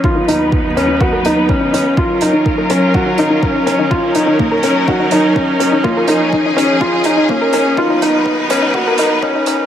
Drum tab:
HH |-x-x-x-x|-x-x-x-x|-x-x-x-x|-x-x-x-x|
BD |o-o-o-o-|o-o-o-o-|o-o-o-o-|o-o-o-o-|

HH |-x-x-x-x|
BD |o-o-o-o-|